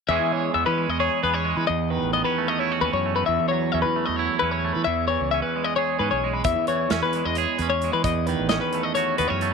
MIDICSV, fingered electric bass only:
0, 0, Header, 1, 2, 480
1, 0, Start_track
1, 0, Key_signature, 4, "major"
1, 0, Tempo, 455235
1, 86, Time_signature, 7, 3, 24, 8
1, 10054, End_track
2, 0, Start_track
2, 0, Title_t, "Fingered electric bass"
2, 0, Program_c, 0, 33
2, 91, Note_on_c, 0, 40, 91
2, 193, Note_off_c, 0, 40, 0
2, 202, Note_on_c, 0, 52, 70
2, 517, Note_off_c, 0, 52, 0
2, 575, Note_on_c, 0, 40, 78
2, 676, Note_off_c, 0, 40, 0
2, 700, Note_on_c, 0, 52, 74
2, 903, Note_off_c, 0, 52, 0
2, 933, Note_on_c, 0, 40, 70
2, 1139, Note_off_c, 0, 40, 0
2, 1302, Note_on_c, 0, 40, 77
2, 1608, Note_off_c, 0, 40, 0
2, 1655, Note_on_c, 0, 52, 75
2, 1755, Note_off_c, 0, 52, 0
2, 1786, Note_on_c, 0, 40, 93
2, 2090, Note_off_c, 0, 40, 0
2, 2137, Note_on_c, 0, 33, 76
2, 2341, Note_off_c, 0, 33, 0
2, 2969, Note_on_c, 0, 39, 75
2, 3072, Note_off_c, 0, 39, 0
2, 3093, Note_on_c, 0, 42, 88
2, 3402, Note_off_c, 0, 42, 0
2, 3459, Note_on_c, 0, 40, 89
2, 3557, Note_off_c, 0, 40, 0
2, 3586, Note_on_c, 0, 52, 66
2, 3890, Note_off_c, 0, 52, 0
2, 3943, Note_on_c, 0, 40, 77
2, 4040, Note_off_c, 0, 40, 0
2, 4067, Note_on_c, 0, 52, 81
2, 4266, Note_off_c, 0, 52, 0
2, 4305, Note_on_c, 0, 40, 74
2, 4505, Note_off_c, 0, 40, 0
2, 4661, Note_on_c, 0, 40, 75
2, 4966, Note_off_c, 0, 40, 0
2, 5019, Note_on_c, 0, 52, 68
2, 5117, Note_off_c, 0, 52, 0
2, 5131, Note_on_c, 0, 40, 94
2, 5441, Note_off_c, 0, 40, 0
2, 5488, Note_on_c, 0, 37, 69
2, 5695, Note_off_c, 0, 37, 0
2, 6324, Note_on_c, 0, 44, 78
2, 6428, Note_off_c, 0, 44, 0
2, 6451, Note_on_c, 0, 35, 82
2, 6761, Note_off_c, 0, 35, 0
2, 6797, Note_on_c, 0, 40, 81
2, 6904, Note_off_c, 0, 40, 0
2, 6912, Note_on_c, 0, 52, 66
2, 7230, Note_off_c, 0, 52, 0
2, 7282, Note_on_c, 0, 40, 76
2, 7387, Note_off_c, 0, 40, 0
2, 7404, Note_on_c, 0, 52, 74
2, 7612, Note_off_c, 0, 52, 0
2, 7647, Note_on_c, 0, 40, 70
2, 7854, Note_off_c, 0, 40, 0
2, 8004, Note_on_c, 0, 40, 84
2, 8317, Note_off_c, 0, 40, 0
2, 8367, Note_on_c, 0, 52, 78
2, 8470, Note_off_c, 0, 52, 0
2, 8483, Note_on_c, 0, 40, 88
2, 8796, Note_off_c, 0, 40, 0
2, 8848, Note_on_c, 0, 33, 66
2, 9055, Note_off_c, 0, 33, 0
2, 9691, Note_on_c, 0, 39, 79
2, 9792, Note_off_c, 0, 39, 0
2, 9812, Note_on_c, 0, 42, 78
2, 10054, Note_off_c, 0, 42, 0
2, 10054, End_track
0, 0, End_of_file